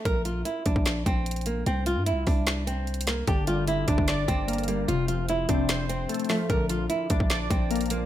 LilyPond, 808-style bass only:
\new Staff \with { instrumentName = "808-style bass" } { \clef bass \time 4/4 \key bes \lydian \tempo 4 = 149 bes,,4 r8 bes,,16 bes,,8. bes,,4. | c,8. g,16. c,16. c,2~ c,8 | g,,4. g,,16 g,,8. g,,4. | f,,4. f,,4. r4 |
bes,,4 r8 bes,,16 bes,,8. bes,,4. | }